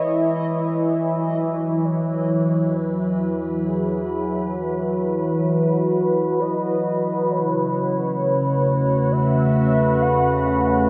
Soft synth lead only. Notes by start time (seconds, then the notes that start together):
0.02 E5
1.85 C#5
2.76 B4
3.68 G#4
5.49 F#4
6.40 D#5
7.31 C#5
9.12 E5
10.02 F#5